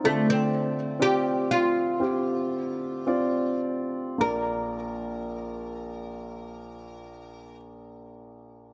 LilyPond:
<<
  \new Staff \with { instrumentName = "Oud" } { \time 4/4 \key bes \major \tempo 4 = 53 a16 c'8. g'8 f'2 r8 | bes'1 | }
  \new Staff \with { instrumentName = "Upright piano" } { \time 4/4 \key bes \major <c' f' d''>4 <c' f' d''>4 <c' f' g'>4 <c' f' d''>4 | <bes bes' d''>1 | }
  \new Staff \with { instrumentName = "Upright piano" } { \clef bass \time 4/4 \key bes \major <d a>1 | bes,,1 | }
>>